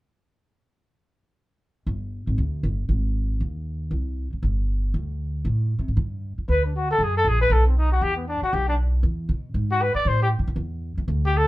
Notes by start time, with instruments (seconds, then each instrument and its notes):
1.87 upright bass G1
2.27 upright bass G#1
2.38 upright bass D2
2.63 upright bass G1
2.89 upright bass G#1
3.40 upright bass D#2
3.91 upright bass C2
4.33 muted upright bass stroke
4.42 upright bass G1
4.94 upright bass D2
5.45 upright bass A2
5.79 upright bass C3
5.88 upright bass G#2
5.97 upright bass G2
6.38 muted upright bass stroke
6.48 upright bass D2, trumpet B4
6.65 trumpet D4
6.76 trumpet F#4
6.91 trumpet A4
6.98 upright bass F#2
7.03 trumpet G#4
7.17 trumpet A4
7.25 upright bass A#1, trumpet G#4
7.41 trumpet B4
7.50 upright bass B1, trumpet A4
7.67 trumpet C4
7.77 trumpet D#4
7.92 trumpet F#4
8.01 upright bass E2, trumpet G4
8.17 trumpet B3
8.28 trumpet D4
8.41 trumpet F#4, muted upright bass stroke
8.53 upright bass B1, trumpet G4
8.68 trumpet D4
9.03 upright bass E2
9.29 upright bass B2
9.54 upright bass G#2
9.72 trumpet F#4
9.82 trumpet B4
9.95 trumpet D5, muted upright bass stroke
10.05 upright bass A2, trumpet C5
10.22 trumpet G4
10.39 upright bass G2
10.47 upright bass E2
10.56 upright bass E2
10.97 upright bass E2
11.08 upright bass D2
11.26 trumpet G4
11.37 trumpet A4